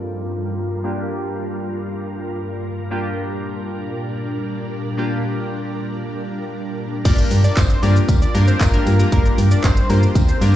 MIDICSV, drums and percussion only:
0, 0, Header, 1, 2, 480
1, 0, Start_track
1, 0, Tempo, 517241
1, 785, Time_signature, 4, 2, 24, 8
1, 9799, End_track
2, 0, Start_track
2, 0, Title_t, "Drums"
2, 6544, Note_on_c, 9, 42, 82
2, 6544, Note_on_c, 9, 49, 104
2, 6544, Note_on_c, 9, 82, 80
2, 6545, Note_on_c, 9, 36, 123
2, 6546, Note_on_c, 9, 54, 34
2, 6637, Note_off_c, 9, 42, 0
2, 6637, Note_off_c, 9, 49, 0
2, 6637, Note_off_c, 9, 82, 0
2, 6638, Note_off_c, 9, 36, 0
2, 6639, Note_off_c, 9, 54, 0
2, 6665, Note_on_c, 9, 82, 61
2, 6758, Note_off_c, 9, 82, 0
2, 6784, Note_on_c, 9, 46, 88
2, 6784, Note_on_c, 9, 82, 64
2, 6876, Note_off_c, 9, 46, 0
2, 6876, Note_off_c, 9, 82, 0
2, 6906, Note_on_c, 9, 82, 92
2, 6999, Note_off_c, 9, 82, 0
2, 7023, Note_on_c, 9, 54, 111
2, 7024, Note_on_c, 9, 36, 115
2, 7024, Note_on_c, 9, 39, 113
2, 7024, Note_on_c, 9, 42, 75
2, 7024, Note_on_c, 9, 82, 74
2, 7116, Note_off_c, 9, 54, 0
2, 7117, Note_off_c, 9, 36, 0
2, 7117, Note_off_c, 9, 39, 0
2, 7117, Note_off_c, 9, 42, 0
2, 7117, Note_off_c, 9, 82, 0
2, 7143, Note_on_c, 9, 82, 58
2, 7236, Note_off_c, 9, 82, 0
2, 7265, Note_on_c, 9, 46, 75
2, 7265, Note_on_c, 9, 82, 56
2, 7266, Note_on_c, 9, 54, 48
2, 7358, Note_off_c, 9, 46, 0
2, 7358, Note_off_c, 9, 54, 0
2, 7358, Note_off_c, 9, 82, 0
2, 7389, Note_on_c, 9, 82, 71
2, 7481, Note_off_c, 9, 82, 0
2, 7503, Note_on_c, 9, 36, 120
2, 7506, Note_on_c, 9, 42, 76
2, 7506, Note_on_c, 9, 82, 78
2, 7507, Note_on_c, 9, 54, 58
2, 7596, Note_off_c, 9, 36, 0
2, 7599, Note_off_c, 9, 42, 0
2, 7599, Note_off_c, 9, 54, 0
2, 7599, Note_off_c, 9, 82, 0
2, 7627, Note_on_c, 9, 82, 64
2, 7719, Note_off_c, 9, 82, 0
2, 7745, Note_on_c, 9, 54, 56
2, 7748, Note_on_c, 9, 46, 75
2, 7748, Note_on_c, 9, 82, 57
2, 7838, Note_off_c, 9, 54, 0
2, 7840, Note_off_c, 9, 46, 0
2, 7840, Note_off_c, 9, 82, 0
2, 7867, Note_on_c, 9, 82, 77
2, 7959, Note_off_c, 9, 82, 0
2, 7985, Note_on_c, 9, 36, 118
2, 7986, Note_on_c, 9, 42, 69
2, 7986, Note_on_c, 9, 54, 83
2, 7986, Note_on_c, 9, 82, 68
2, 7989, Note_on_c, 9, 39, 127
2, 8078, Note_off_c, 9, 36, 0
2, 8079, Note_off_c, 9, 42, 0
2, 8079, Note_off_c, 9, 54, 0
2, 8079, Note_off_c, 9, 82, 0
2, 8082, Note_off_c, 9, 39, 0
2, 8106, Note_on_c, 9, 82, 56
2, 8199, Note_off_c, 9, 82, 0
2, 8226, Note_on_c, 9, 54, 52
2, 8228, Note_on_c, 9, 46, 78
2, 8228, Note_on_c, 9, 82, 56
2, 8319, Note_off_c, 9, 54, 0
2, 8321, Note_off_c, 9, 46, 0
2, 8321, Note_off_c, 9, 82, 0
2, 8347, Note_on_c, 9, 82, 82
2, 8440, Note_off_c, 9, 82, 0
2, 8466, Note_on_c, 9, 36, 116
2, 8467, Note_on_c, 9, 42, 83
2, 8467, Note_on_c, 9, 82, 84
2, 8559, Note_off_c, 9, 36, 0
2, 8559, Note_off_c, 9, 42, 0
2, 8559, Note_off_c, 9, 82, 0
2, 8588, Note_on_c, 9, 82, 58
2, 8681, Note_off_c, 9, 82, 0
2, 8707, Note_on_c, 9, 46, 93
2, 8707, Note_on_c, 9, 82, 64
2, 8800, Note_off_c, 9, 46, 0
2, 8800, Note_off_c, 9, 82, 0
2, 8827, Note_on_c, 9, 82, 87
2, 8920, Note_off_c, 9, 82, 0
2, 8944, Note_on_c, 9, 54, 100
2, 8945, Note_on_c, 9, 36, 111
2, 8946, Note_on_c, 9, 39, 116
2, 8946, Note_on_c, 9, 42, 74
2, 8946, Note_on_c, 9, 82, 73
2, 9037, Note_off_c, 9, 54, 0
2, 9038, Note_off_c, 9, 36, 0
2, 9038, Note_off_c, 9, 42, 0
2, 9038, Note_off_c, 9, 82, 0
2, 9039, Note_off_c, 9, 39, 0
2, 9065, Note_on_c, 9, 82, 59
2, 9158, Note_off_c, 9, 82, 0
2, 9184, Note_on_c, 9, 46, 79
2, 9184, Note_on_c, 9, 54, 47
2, 9184, Note_on_c, 9, 82, 57
2, 9277, Note_off_c, 9, 46, 0
2, 9277, Note_off_c, 9, 54, 0
2, 9277, Note_off_c, 9, 82, 0
2, 9307, Note_on_c, 9, 82, 69
2, 9399, Note_off_c, 9, 82, 0
2, 9423, Note_on_c, 9, 36, 121
2, 9424, Note_on_c, 9, 42, 79
2, 9424, Note_on_c, 9, 82, 75
2, 9427, Note_on_c, 9, 54, 59
2, 9516, Note_off_c, 9, 36, 0
2, 9517, Note_off_c, 9, 42, 0
2, 9517, Note_off_c, 9, 82, 0
2, 9520, Note_off_c, 9, 54, 0
2, 9544, Note_on_c, 9, 82, 63
2, 9637, Note_off_c, 9, 82, 0
2, 9665, Note_on_c, 9, 46, 78
2, 9665, Note_on_c, 9, 54, 55
2, 9665, Note_on_c, 9, 82, 59
2, 9757, Note_off_c, 9, 54, 0
2, 9758, Note_off_c, 9, 46, 0
2, 9758, Note_off_c, 9, 82, 0
2, 9799, End_track
0, 0, End_of_file